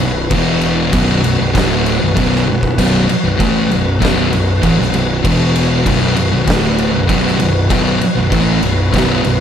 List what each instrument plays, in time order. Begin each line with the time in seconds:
Already playing: tonewheel organ B3 E4 B4
0.00 picked electric bass B0, distorted electric guitar B1 F#2, crash
0.30 picked electric bass E1, distorted electric guitar E2 B2 E3, tonewheel organ E3 F#4, kick, crash
0.61 crash
0.93 picked electric bass B0, distorted electric guitar B1 F#2 B2, tonewheel organ B4, kick, crash
1.23 picked electric bass B0, distorted electric guitar B1 F#2, crash
1.39 picked electric bass B0, distorted electric guitar B1 F#2
1.54 picked electric bass D1, distorted electric guitar D2 A2 D3, kick, snare, crash
1.86 crash
2.00 picked electric bass B0, distorted electric guitar B1 F#2
2.15 picked electric bass B0, distorted electric guitar B1 F#2 B2, kick, crash
2.35 snare
2.47 picked electric bass B0, distorted electric guitar B1 F#2, high tom
2.63 kick
2.78 picked electric bass B0, distorted electric guitar B1 F#2 B2, kick, splash, crash
3.09 muted picked electric bass stroke, muted distorted electric guitar stroke, crash
3.24 picked electric bass B0, distorted electric guitar B1 F#2
3.37 picked electric bass A1, distorted electric guitar A2 E3 A3, kick, crash
3.69 picked electric bass B0, distorted electric guitar B1 F#2, crash
3.99 picked electric bass B0, distorted electric guitar B1 F#2 B2, kick, crash
4.05 snare
4.32 picked electric bass B0, distorted electric guitar B1 F#2, crash
4.62 picked electric bass A1, distorted electric guitar A2 E3, kick, crash
4.78 picked electric bass B0, distorted electric guitar B1 F#2, snare
4.93 picked electric bass B0, distorted electric guitar B1 F#2, crash
5.22 picked electric bass E1, distorted electric guitar E2 B2 E3, tonewheel organ E3 F#4, kick, crash
5.56 crash
5.84 picked electric bass B0, distorted electric guitar B1 F#2 B2, tonewheel organ B4, kick, crash
6.16 picked electric bass B0, distorted electric guitar B1 F#2, crash
6.32 picked electric bass B0, distorted electric guitar B1 F#2
6.46 picked electric bass D1, distorted electric guitar D2 A2 D3, kick, crash
6.50 snare
6.78 crash
6.92 picked electric bass B0, distorted electric guitar B1 F#2
7.08 picked electric bass B0, distorted electric guitar B1 F#2 B2, kick, crash
7.27 snare
7.38 picked electric bass B0, distorted electric guitar B1 F#2, crash
7.69 picked electric bass B0, distorted electric guitar B1 F#2 B2, kick, crash
7.99 muted distorted electric guitar stroke, muted picked electric bass stroke, crash
8.15 picked electric bass B0, distorted electric guitar B1 F#2
8.30 picked electric bass A1, distorted electric guitar A2 E3 A3, tonewheel organ E4, kick, crash
8.62 picked electric bass B0, distorted electric guitar B1 F#2, crash
8.91 picked electric bass B0, distorted electric guitar B1 F#2 B2, kick, crash
8.97 snare
9.23 picked electric bass B0, distorted electric guitar B1 F#2, crash